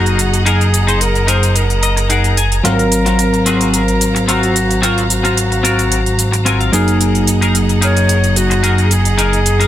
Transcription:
Already playing: F#1 F#3 A#3 D#4 F#4 G#4 A#4 D#5 F#5 A#5
0.06 closed hi-hat, cabasa
0.19 closed hi-hat, cabasa
0.34 closed hi-hat, cabasa
0.45 D#4 G#4 A#4, closed hi-hat, cabasa
0.61 closed hi-hat, cabasa
0.74 closed hi-hat, cabasa
0.87 D#4 G#4 C5, closed hi-hat, cabasa
1.01 A#4, closed hi-hat, cabasa
1.14 muted clean electric guitar stroke, closed hi-hat, cabasa
1.27 D#4 G#4 A#4 C5, closed hi-hat, cabasa
1.43 closed hi-hat, cabasa
1.56 A#4, closed hi-hat, cabasa
1.70 closed hi-hat, cabasa
1.83 D#5, closed hi-hat, cabasa
1.97 muted clean electric guitar stroke, closed hi-hat, cabasa
2.09 D#4 G#4 A#4 F#5, closed hi-hat, cabasa
2.24 closed hi-hat, cabasa
2.37 G#5, closed hi-hat, cabasa
2.52 closed hi-hat, cabasa
2.64 G#1 F#3 C4 F4 F#4 A#4 C5 F5, closed hi-hat, cabasa
2.79 closed hi-hat, cabasa
2.92 closed hi-hat, cabasa
3.06 C4 F4 F#4 A#4, closed hi-hat, cabasa
3.19 closed hi-hat, cabasa
3.33 muted clean electric guitar stroke, closed hi-hat, cabasa
3.46 C4 F4 F#4 G#4, closed hi-hat, cabasa
3.61 closed hi-hat, cabasa
3.73 A#4, closed hi-hat, cabasa
3.88 closed hi-hat, cabasa
4.01 closed hi-hat, cabasa
4.15 muted clean electric guitar stroke, closed hi-hat, cabasa
4.28 C4 F4 F#4 A#4, closed hi-hat, cabasa
4.43 closed hi-hat, cabasa
4.56 closed hi-hat, cabasa
4.71 closed hi-hat, cabasa
4.82 C4 F4 F#4 A#4, closed hi-hat, cabasa
4.98 closed hi-hat, cabasa
5.10 F#4, closed hi-hat, cabasa
5.23 C4 F4 F#4 A#4, closed hi-hat, cabasa
5.37 closed hi-hat, cabasa
5.50 muted clean electric guitar stroke, closed hi-hat, cabasa
5.63 C4 F4 F#4 A#4, closed hi-hat, cabasa
5.79 closed hi-hat, cabasa
5.92 closed hi-hat, cabasa
6.06 closed hi-hat, cabasa
6.19 closed hi-hat, cabasa
6.32 muted clean electric guitar stroke, closed hi-hat, cabasa
6.45 C4 F4 F#4 A#4 G#5, closed hi-hat, cabasa
6.60 F5, closed hi-hat, cabasa
6.72 F#1 F#3 A#3 D#4 G#4 A#4 D#5 F#5, closed hi-hat, cabasa
6.88 closed hi-hat, cabasa
7.01 closed hi-hat, cabasa
7.15 closed hi-hat, cabasa
7.27 closed hi-hat, cabasa
7.41 D#4 G#4 A#4, closed hi-hat, cabasa
7.55 closed hi-hat, cabasa
7.69 muted clean electric guitar stroke, closed hi-hat, cabasa
7.81 D#4 G#4 A#4 C#5, closed hi-hat, cabasa
7.97 closed hi-hat, cabasa
8.09 closed hi-hat, cabasa
8.24 closed hi-hat, cabasa
8.36 F#4, closed hi-hat, cabasa
8.50 muted clean electric guitar stroke, closed hi-hat, cabasa
8.63 D#4 G#4 A#4, closed hi-hat, cabasa
8.78 closed hi-hat, cabasa
8.91 G#4, closed hi-hat, cabasa
9.05 closed hi-hat, cabasa
9.18 D#4 G#4 A#4, closed hi-hat, cabasa
9.33 closed hi-hat, cabasa
9.46 closed hi-hat, cabasa
9.60 D#4 G#4 A#4, closed hi-hat, cabasa

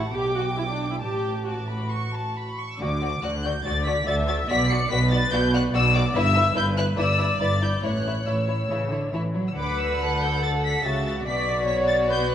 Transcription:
Already playing: A1 F#5
0.14 B1 B2 G4 G5 D6
0.35 F#4
0.57 E4
0.68 D4
0.90 E4
1.00 A1 A2 G4 A5 D6
1.46 F#4 A5 D6
1.68 B5
1.91 C#6
2.13 A5
2.36 B5
2.59 C#6
2.70 E6
2.80 D2 D3 F#4 D5 D6
3.02 F#4 D5
3.23 D2 D3 F#4 D5 F#6
3.45 F#4 D5 G6
3.65 D2 D3 F#4 D5 A6
3.86 F#4 D5 B6
4.07 D2 D3 F#4 D5 E5 A6
4.27 F#4 D5 A6
4.49 B1 B2 F#4 D5 B6
4.69 F#4 D5 C#7
4.90 B1 B2 F#4 B4 D5 B6
5.11 F#4 D5 A6
5.32 B1 B2 F#4 D5 G6
5.53 F#4 D5 F#6
5.74 B1 B2 F#4 D5 E6
5.95 F#4 D5 D6
6.15 G1 G2 E4 B4 E5 E6
6.35 E4 B4
6.55 G1 G2 E4 B4 G6
6.77 E4 B4 F#6
6.97 G1 G2 E4 B4 D5 E6
7.19 E4 B4
7.40 G1 G2 E4 B4 A6
7.61 E4 B4 G6
7.83 A1 A2 E4 C#5 F#6
8.05 E4 C#5
8.26 A1 A2 E4 C#5 E6
8.48 E4 C#5
8.70 A1 C#3 E4 C#5
8.91 D3 E4 C#5
9.12 A1 E3 E4 C#5
9.34 F#3 E4 C#5
9.47 E6
9.56 D2 D3 B4 F#5 D6
9.79 E6
10.00 A4 F#6
10.22 G6
10.43 A4 A6
10.64 B6
10.84 C#2 C#3 F#4 E5 A6
11.05 A6
11.26 B1 B2 F#4 D5 B6
11.47 D5
11.67 C#5 B6
11.88 A6
12.09 B4 G6
12.31 F#6

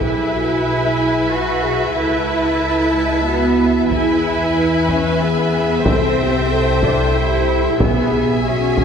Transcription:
0.00 B1 E4 G#4 B4 E5 G#5, taiko
0.33 F#4
0.65 G#4
1.30 F#4 B4
1.62 G#4
1.95 C#2 E4 A4 A5
2.28 B4
2.60 A4
2.92 G#3
3.25 B3 F#4
3.58 E4
3.89 E2 E4 G#4 B4 E5 G#5, taiko
4.56 B4
4.88 C#4, taiko
5.21 B3 G#4
5.84 C2 C4 A4 C5 G5, taiko
6.20 G4
6.52 A4
6.83 D4, taiko
7.15 E4 G4
7.79 B1 B2 B3 G#4 E5 G#5, taiko
8.46 C#4 F#4
8.77 taiko

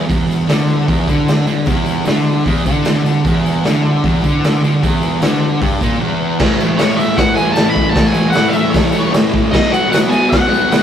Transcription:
0.07 E2, kick, open hi-hat, tambourine
0.31 tambourine
0.48 D3, snare, open hi-hat, tambourine
0.69 tambourine
0.86 E2, kick, open hi-hat, tambourine
1.08 D3, kick, tambourine
1.28 snare, open hi-hat, tambourine
1.47 D3, tambourine
1.66 E2, kick, open hi-hat, tambourine
1.86 tambourine
2.05 D3, snare, open hi-hat, tambourine
2.26 tambourine
2.45 E2, kick, open hi-hat, tambourine
2.65 D3, kick, tambourine
2.85 snare, open hi-hat, tambourine
3.04 D3, tambourine
3.25 E2, kick, open hi-hat, tambourine
3.46 tambourine
3.64 D3, snare, open hi-hat, tambourine
3.85 tambourine
4.04 E2, kick, open hi-hat, tambourine
4.23 D3, kick, tambourine
4.44 snare, open hi-hat, tambourine
4.64 D3, tambourine
4.82 E2, kick, open hi-hat, tambourine
5.03 tambourine
5.22 D3, snare, open hi-hat, tambourine
5.61 G2, kick, open hi-hat, tambourine
5.81 A#2, kick, tambourine
6.00 E2
6.39 A2 E3, kick, snare, crash
6.43 A3
6.57 A3, tambourine
6.61 E3
6.75 A2 E3 C#5, open hi-hat
6.79 A3, snare, tambourine
6.95 A3 E5
7.00 E3, tambourine
7.16 F#5, kick, snare, open hi-hat, tambourine
7.35 E3 A3 G#5, tambourine
7.52 A2 A5, open hi-hat, tambourine
7.57 E3 A3, snare
7.70 B5
7.76 kick
7.89 A2 A5
7.95 E3 A3, kick, snare, open hi-hat
8.07 G#5
8.12 A3, tambourine
8.17 E3
8.30 F#5, tambourine
8.34 A2 E3 A3, snare, open hi-hat
8.49 E5
8.53 E3 A3, tambourine
8.70 C#5, tambourine
8.74 kick, snare, open hi-hat
8.91 E3 A3, tambourine
9.10 A2 E3, open hi-hat
9.14 A3, snare, tambourine
9.34 kick
9.51 B2 F#3 D#5, kick, snare, crash
9.55 B3
9.70 B3 F#5, tambourine
9.74 F#3
9.89 B2 F#3 B3 F#5, tambourine
9.94 snare, open hi-hat
10.08 B3 G#5
10.12 F#3, tambourine
10.30 F#5, kick, snare, open hi-hat, tambourine
10.48 B3
10.52 F#3, tambourine
10.68 B2 F#3, open hi-hat
10.72 B3, snare, tambourine

